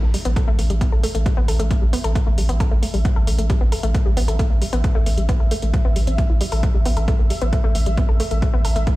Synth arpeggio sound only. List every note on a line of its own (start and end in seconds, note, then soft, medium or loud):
0.03 0.07 A3 medium
0.14 0.18 G3 medium
0.25 0.28 B3 loud
0.36 0.43 A4 medium
0.48 0.50 A3 loud
0.59 0.63 A3 medium
0.70 0.74 G3 medium
0.81 0.84 B3 loud
0.92 0.99 A4 medium
1.03 1.06 A3 loud
1.15 1.19 A3 medium
1.26 1.30 G3 medium
1.37 1.40 B3 loud
1.48 1.54 A4 medium
1.60 1.62 A3 loud
1.71 1.75 A3 medium
1.82 1.86 G3 medium
1.93 1.96 B3 loud
2.04 2.10 A4 medium
2.16 2.18 A3 loud
2.27 2.31 A3 medium
2.38 2.42 G3 medium
2.49 2.51 B3 loud
2.60 2.66 A4 medium
2.71 2.74 A3 loud
2.83 2.87 A3 medium
2.94 2.98 G3 medium
3.05 3.07 B3 loud
3.16 3.22 A4 medium
3.27 3.30 A3 loud
3.39 3.43 A3 medium
3.50 3.54 G3 medium
3.61 3.63 B3 loud
3.72 3.78 A4 medium
3.83 3.86 A3 loud
3.94 3.99 A3 medium
4.06 4.10 G3 medium
4.17 4.19 B3 loud
4.28 4.34 A4 medium
4.39 4.42 A3 loud
4.50 4.55 A3 medium
4.62 4.66 G3 medium
4.73 4.75 B3 loud
4.84 4.90 A4 medium
4.95 4.98 A3 loud
5.06 5.11 A3 medium
5.18 5.22 G3 medium
5.29 5.31 B3 loud
5.40 5.46 A4 medium
5.51 5.54 A3 loud
5.63 5.67 A3 medium
5.74 5.78 G3 medium
5.85 5.87 B3 loud
5.96 6.00 G3 medium
6.07 6.10 C4 medium
6.19 6.21 B3 medium
6.30 6.32 E4 medium
6.41 6.45 G3 loud
6.52 6.55 A4 medium
6.63 6.67 A3 medium
6.75 6.79 G3 medium
6.86 6.88 B3 loud
6.97 7.03 A4 medium
7.08 7.10 A3 loud
7.19 7.23 A3 medium
7.30 7.35 G3 medium
7.42 7.44 B3 loud
7.53 7.59 A4 medium
7.64 7.66 A3 loud
7.75 7.79 A3 medium
7.86 7.90 G3 medium
7.97 8.00 B3 loud
8.09 8.15 A4 medium
8.20 8.22 A3 loud
8.31 8.35 A3 medium
8.42 8.46 G3 medium
8.54 8.56 B3 loud
8.65 8.71 A4 medium
8.76 8.78 A3 loud
8.87 8.91 A3 medium